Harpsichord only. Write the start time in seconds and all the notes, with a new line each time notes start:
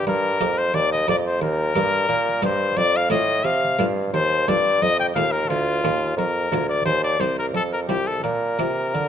0.07 G2
0.41 F2 A#3 D#4 G4
0.74 D#2
1.08 F2 A#3 D#4 G4
1.42 D#2
1.75 G2 A#3 D#4 G4
2.09 A#2
2.42 G2 A#3 D#4 G4
2.77 F2
3.10 A2 A3 C4 F4
3.45 C3
3.79 G2 A3 C4 F4
4.14 D#2
4.48 G2 A3 C4 F4
4.82 F2
5.16 D#2 A3 C4 F4
5.50 D2
5.85 D#2 A#3 D4 F4
6.19 F2
6.52 D2 A#3 D4 F4
6.86 D#2
7.20 C2 C4 G4
7.55 F2
7.89 C2 C4 F4
8.24 A#2
8.59 C3 A#3 D4 F4
8.95 D3